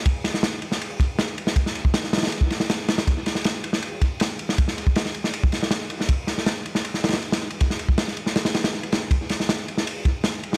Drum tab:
RD |x---x---x---x---x---x---x-x-x---|x---x---x---xxxxx---x---x---x-x-|x---x---x---x---x---x---x-x-x---|x---x---x---x---x---x---x---x---|
SD |----o-o-o-----o---------o-----o-|--o-----o-o-oooo----o-o-o---o-o-|----o-o-o-----o---------o-----o-|--o-----o-o---o-----o-o-o-----o-|
BD |o-------------------o-----------|o-----o-----------o-------------|o-------------------o-----------|o-----o-----------o-------------|

RD |x---x---x---x---x---xxx-x-x---x-|x---x---x---x---x-x-x-x---x-x---|x---x---x---x---x---x---x-x-x---|
SD |----o-o-o-----o---o-ooo---o-----|--o-----o-o---o-o-o-o-o-----o---|----o-o-o-----o---------o-----o-|
BD |o-------------------------------|o-----o-------------------------|o-------------------o-----------|